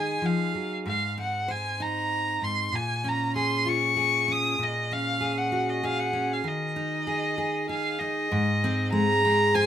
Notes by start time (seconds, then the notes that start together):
Already playing: D#3 G#3 D#4 G#4 G#5
0.22 F3 F5
0.55 F#3
0.86 G#2 F5
1.17 C4 F#5
1.48 C5 G#5
1.80 D#4 A#5
2.42 G#2 C6
2.72 A#2 G#5
3.04 C#4
3.09 A#5
3.36 G#4 C6
3.65 F4 C#6
3.96 G#4
4.28 C#4
4.32 D#6
4.58 A#2
4.63 D#5
4.91 C#4 F5
5.21 G#4
5.38 F#5
5.52 F#4
5.69 D#5
5.83 G#4 F5
6.00 F#5
6.13 C#4
6.33 F5
6.44 D#3
6.48 D#5
6.76 D#4
7.07 G#4
7.38 G#4
7.69 G#4 F5
7.99 D#4 D#5
8.32 G#2
8.64 C4
8.92 G#3 A#5
9.25 C4
9.55 C5 G#5